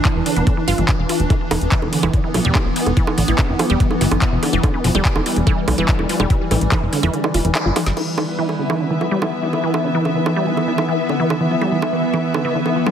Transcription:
Already playing: E3 D4
0.05 E3, kick, clap, closed hi-hat
0.16 E1
0.26 D3, open hi-hat
0.36 E1 B3, closed hi-hat
0.47 D3, kick, closed hi-hat
0.57 E3
0.68 G1 F4, open hi-hat
0.78 G1 E3, closed hi-hat
0.89 E3, kick, clap, closed hi-hat
0.99 E1
1.09 F4, open hi-hat
1.20 E1, closed hi-hat
1.30 E3 B3, kick, closed hi-hat, high bongo
1.51 E1 E3, open hi-hat, high bongo
1.61 E1, closed hi-hat
1.72 E3, kick, clap, closed hi-hat
1.82 E1, high bongo
1.93 D3, open hi-hat
2.03 E1 E3, closed hi-hat, high bongo
2.14 D3, kick, closed hi-hat
2.24 E3
2.34 B1 F3, open hi-hat, high bongo
2.45 E1 G3, closed hi-hat
2.55 E3, kick, clap, closed hi-hat, high bongo
2.66 E1
2.76 E3, open hi-hat
2.86 E1, closed hi-hat, high bongo
2.97 E3, kick, closed hi-hat
3.07 high bongo
3.18 A1 D3, open hi-hat
3.28 A1 E3, closed hi-hat
3.39 D3, kick, clap, closed hi-hat, high bongo
3.49 E1 E3
3.59 F3, open hi-hat, high bongo
3.70 E1 G3, closed hi-hat
3.80 E3, kick, closed hi-hat
3.91 high bongo
4.01 G1 E3, open hi-hat
4.11 G1, closed hi-hat, high bongo
4.22 E3, kick, clap, closed hi-hat
4.32 E1
4.43 D3, open hi-hat, high bongo
4.53 E1 E3, closed hi-hat
4.63 D3 G3, kick, closed hi-hat, high bongo
4.74 E3
4.84 E1 F3, open hi-hat
4.95 E1 G3, closed hi-hat, high bongo
5.05 E3, kick, clap, closed hi-hat
5.16 E1, high bongo
5.26 E3, open hi-hat
5.36 E1, closed hi-hat
5.47 E3, kick, closed hi-hat, high bongo
5.68 B1 D3, open hi-hat, high bongo
5.78 E1 E3, closed hi-hat
5.88 D3, kick, clap, closed hi-hat
5.99 E1 E3, high bongo
6.09 F3, open hi-hat
6.20 E1 G3, closed hi-hat, high bongo
6.30 E3, kick, closed hi-hat
6.51 A1 E3, open hi-hat, high bongo
6.61 A1, closed hi-hat
6.72 E3, kick, clap, closed hi-hat, high bongo
6.82 E1
6.93 D3, open hi-hat
7.03 E1 E3, closed hi-hat, high bongo
7.14 D3, closed hi-hat
7.24 E3, high bongo
7.34 E1 F4, open hi-hat
7.45 E1 E3, closed hi-hat
7.55 E4, clap, closed hi-hat, high bongo
7.66 G1 F4
7.76 F3, snare, open hi-hat, high bongo
7.86 G1, snare, closed hi-hat
7.97 E3 B3 E4, crash, high bongo
8.18 E3 B4, high bongo
8.39 E3
8.49 high bongo
8.59 D3
8.63 E5
8.70 E3, high bongo
8.80 D3
8.91 E3
9.01 F3, high bongo
9.11 G3
9.22 E3, high bongo
9.43 E3
9.53 high bongo
9.64 E3
9.74 high bongo
9.84 D3
9.95 E3
10.05 D3, high bongo
10.16 E3
10.26 F3, high bongo
10.36 G3
10.47 E3
10.57 high bongo
10.68 E3
10.78 high bongo
10.89 E3
11.09 D3, high bongo
11.20 E3
11.30 D3, high bongo
11.41 E3
11.51 F3
11.61 G3, high bongo
11.72 E3
11.82 high bongo
11.93 E3
12.14 E3, high bongo
12.34 D3, high bongo
12.45 E3
12.55 D3
12.66 E3, high bongo
12.76 F3
12.86 G3, high bongo

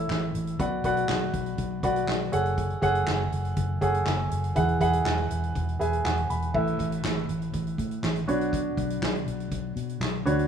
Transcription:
Already playing: A2 E4 A4 C#5 E5
0.10 A1, snare, clap
0.34 A1, closed hi-hat
0.47 closed hi-hat
0.59 B1 B2 F#4 B4 D5 F#5, kick, closed hi-hat
0.84 B1 F#4 B4 D5 F#5, kick, closed hi-hat
0.97 closed hi-hat
1.09 B1, snare, clap
1.34 B1, kick, closed hi-hat
1.46 closed hi-hat
1.58 B1, kick, closed hi-hat
1.83 B1 F#4 B4 D5 F#5, kick, closed hi-hat
1.96 closed hi-hat
2.08 B1, snare, clap
2.32 F#1 G#4 A4 C#5 F#5, closed hi-hat
2.45 closed hi-hat
2.58 kick, closed hi-hat
2.70 closed hi-hat
2.82 F#1 G#4 A4 C#5 F#5, kick, closed hi-hat
2.95 closed hi-hat
3.07 F#1, snare, clap
3.32 F#1, closed hi-hat
3.45 closed hi-hat
3.57 F#1, kick, closed hi-hat
3.81 F#1 G#4 A4 C#5 F#5, kick, closed hi-hat
3.94 closed hi-hat
4.06 F#1, snare, clap
4.31 F#1, closed hi-hat
4.44 closed hi-hat
4.56 E1 E3 G#4 B4 E5 F#5, kick, closed hi-hat
4.69 closed hi-hat
4.80 E1 G#4 B4 E5 F#5, kick, closed hi-hat
4.93 closed hi-hat
5.05 E1, snare, clap
5.30 E1, closed hi-hat
5.44 closed hi-hat
5.55 E1, kick, closed hi-hat
5.69 closed hi-hat
5.79 E1 G#4 B4 E5 G#5, closed hi-hat
5.93 closed hi-hat
6.05 E1 F#5, snare, clap
6.17 closed hi-hat
6.30 E1 B5, closed hi-hat
6.42 closed hi-hat
6.54 A1 A2 E4 A4 B4 E5, kick, crash
6.67 closed hi-hat
6.79 A1, kick, closed hi-hat
6.92 closed hi-hat
7.04 A1, snare, clap
7.29 A1, closed hi-hat
7.42 closed hi-hat
7.53 A1, kick, closed hi-hat
7.67 closed hi-hat
7.78 A2, kick, closed hi-hat
7.91 closed hi-hat
8.03 A1, snare, clap
8.16 closed hi-hat
8.27 B1 B2 D4 F#4 B4 C#5, closed hi-hat
8.41 closed hi-hat
8.53 kick, closed hi-hat
8.77 B1, kick, closed hi-hat
8.90 closed hi-hat
9.02 B1, snare, clap
9.15 closed hi-hat
9.27 B1, closed hi-hat
9.40 closed hi-hat
9.51 B1, kick, closed hi-hat
9.76 B2, closed hi-hat
9.89 closed hi-hat
10.00 B1, snare, clap
10.25 D2 D4 F#4 B4 C#5, closed hi-hat
10.39 closed hi-hat

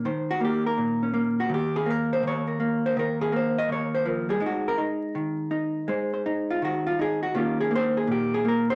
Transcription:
0.05 D#3 C5
0.31 F#4
0.40 A#3
0.45 G4
0.67 A#4
0.78 A#2
1.03 C#4
1.14 A#3
1.40 F#4
1.49 D#3
1.54 G4
1.76 G#4
1.86 A#3
1.90 A#4
2.13 C5
2.23 D#3
2.28 C#5
2.48 A#4
2.60 A#3
2.86 C5
2.97 D#3 A#4
3.21 G#4
3.32 A#3 C5
3.58 D#5
3.69 D#3 C#5
3.95 C5
4.05 F3 A#4
4.29 G3 G#4
4.40 G#3 D#4
4.46 F#4
4.68 A#4
4.78 D#4
5.15 D#3
5.51 D#4
5.88 G#3 C5
6.14 C5
6.26 D#4
6.50 F4
6.62 D#3 F#4
6.87 F4
6.99 D#4 G#4
7.23 F#4
7.35 D#3 A#3 C#4 F4 G4
7.61 G#4
7.71 A#3
7.76 C5
7.97 G#4
8.07 A#2
8.12 G4
8.34 G#4
8.45 A#3 A#4
8.70 C5

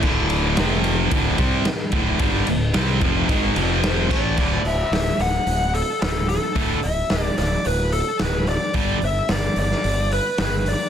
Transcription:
0.02 D1 D2 A2 D3, kick, crash
0.30 ride
0.57 F1 F2 C3 F3, snare, ride
0.84 ride
1.11 D1 D2 A2 D3, kick, ride
1.38 C2 C3 G3 C4, kick, ride
1.65 muted distorted electric guitar stroke, muted fingered electric bass stroke, snare, ride
1.92 D1 D2 A2 D3, kick, ride
2.19 G1 G2 D3 G3, kick, ride
2.34 snare
2.47 D1 D2 A2, ride
2.74 C2 C3 G3 C4, snare, ride
3.01 F1 F2 C3 F3, kick, ride
3.29 G#1 G#2 D#3 G#3, kick, ride
3.56 F1 F2 C3 F3, ride
3.83 C5, snare, ride
4.11 A1 A2 E3 A3 D5, kick, crash
4.37 D1 D2 A2 D3, kick, crash
4.65 D1 E5, open hi-hat
4.91 D1, snare, open hi-hat
5.20 D1 F#5, open hi-hat
5.46 D1, open hi-hat
5.74 A4, open hi-hat
6.02 D1 A4, snare, open hi-hat
6.29 A4, open hi-hat
6.55 D1 D2 A2 D3, kick, open hi-hat
6.83 D1 E5, open hi-hat
7.10 D1, snare, open hi-hat
7.38 D1 D5, snare, open hi-hat
7.65 D1 B4, open hi-hat
7.92 A4, open hi-hat
8.19 D1 B4, snare, open hi-hat
8.47 D5, open hi-hat
8.74 G1 G2 D3 G3, kick, open hi-hat
9.02 G1 E5, open hi-hat
9.29 G1 D5, snare, open hi-hat
9.56 G1 D5, open hi-hat
9.71 snare
9.84 G1, open hi-hat
10.12 B4, open hi-hat
10.38 G1 B4, snare, open hi-hat
10.66 D5, open hi-hat

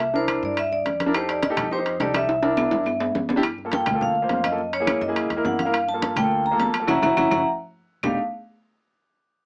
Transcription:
Already playing: C2 E5
0.00 high timbale
0.14 D4 E4 A#4 C5, high conga
0.28 high conga, high timbale, claves
0.43 G2 D5, high conga
0.57 E5, high conga, high timbale, claves
0.72 D5, high conga
0.85 F2, high conga, high timbale
1.00 high conga, high timbale
1.06 D4 E4 A#4
1.14 D#4 G4 A4 C5, high conga, high timbale, claves
1.29 D5, high conga, high timbale
1.43 D#5, high conga, high timbale
1.50 D#4 G4 A4
1.57 F2, high conga, low conga, high timbale, claves
1.71 D#4 G4 C5, high conga
1.78 D#4 G4 C5
1.86 high conga, high timbale
2.00 C2 D#4 G4 A4 D5, high conga, high timbale
2.14 D#4 G4 A4 E5, high conga, high timbale, claves
2.29 high conga, high timbale
2.43 D4 E4 A#4, high conga, high timbale
2.57 high conga, low timbale, claves
2.71 G2, high conga, high timbale
2.86 high conga, low timbale, claves
3.00 high conga, low timbale
3.15 G2, high conga, low timbale
3.29 high conga, low timbale
3.36 D4 E4 G4
3.43 high conga, high timbale, claves
3.58 high conga
3.65 A#3 F4 A4
3.72 G5, high conga, high timbale, low timbale
3.86 D2, high conga, low conga, high timbale, claves
3.94 A#3 F4 A4
4.01 F5, high conga, low conga
4.15 high conga
4.22 A#3 F4 C5
4.29 F#2, high conga, high timbale, low timbale
4.44 D#5, high conga, high timbale, claves
4.51 A#3 F4 A4
4.58 high conga
4.73 C#5, high conga, high timbale
4.80 A#3 E4 G#4
4.87 high conga, high timbale, low timbale, claves
5.01 F#2 D#5, high conga
5.08 A#3 E4 G#4
5.16 high conga, high timbale, claves
5.30 E2, high conga, high timbale
5.37 A#3 E4 A#4
5.44 G2 F#5, high conga, low timbale
5.59 F5, high conga, high timbale
5.65 A#3 E4 A#4
5.73 high conga, high timbale, claves
5.88 A5, high conga
5.94 A#3 F4 A4
6.02 high conga, high timbale, low timbale
6.16 D2 G5, high conga, low conga, high timbale, claves
6.23 A#3 F4 A4
6.31 high conga
6.46 A#5, high conga
6.51 A#3 F4 A4
6.59 F#2 A5, high conga, high timbale, low timbale
6.74 high timbale, claves
6.80 A#3 F4 A4
6.87 F#1 C#4 E4 F#4 E5 F#5 A#5, high conga, high timbale, claves
7.02 F#1 C#4 E4 F#4 E5 F#5 A#5, high conga, high timbale, claves
7.17 F#1 C#4 E4 F#4 E5 F#5 A#5, high conga, high timbale, claves
7.31 F#1 C#4 E4 F#4 E5 F#5 A#5, high conga, high timbale, claves
8.03 F1 A3 D4 D#4 G4 F5, low conga, low timbale, claves

